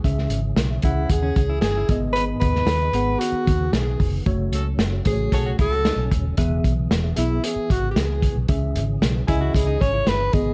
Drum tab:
HH |x-x-x-x-x-x-x-x-|x-x-x-x-x-x-x-o-|x-x-x-x-x-x-x-x-|x-x-x-x-x-x-x-x-|
SD |-o--o-------o---|---oo-------o---|----o-------o---|----o-------o---|
BD |o-----o-o-o---o-|--o-------o---o-|o-----o-o-o---o-|o-o-------o---o-|

HH |x-x-x-x-x-x-x-x-|
SD |----o-------o---|
BD |o-----o-o-o---o-|